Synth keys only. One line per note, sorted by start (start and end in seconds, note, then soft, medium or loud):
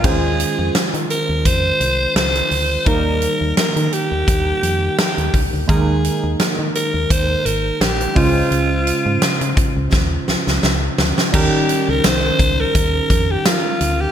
0.03 1.06 D#3 medium
0.03 2.82 G#3 medium
0.03 2.83 C#4 medium
0.03 2.83 F4 medium
0.03 2.83 C5 medium
2.85 3.88 D#3 medium
2.85 5.64 G3 medium
2.85 5.65 A#3 medium
2.85 5.65 D#4 medium
2.85 5.66 A#4 medium
5.67 6.71 D#3 medium
5.67 8.11 G#3 medium
5.67 8.12 A#3 medium
5.67 8.12 D#4 medium
5.67 8.12 A#4 medium
8.15 9.18 C#3 medium
8.15 10.94 G#3 medium
8.15 10.94 C#4 medium
8.15 10.95 F4 medium
8.15 10.95 C5 medium
11.33 12.36 D#3 medium
11.33 14.11 G3 medium
11.33 14.12 C#4 medium
11.33 14.12 D#4 medium
11.33 14.12 A#4 medium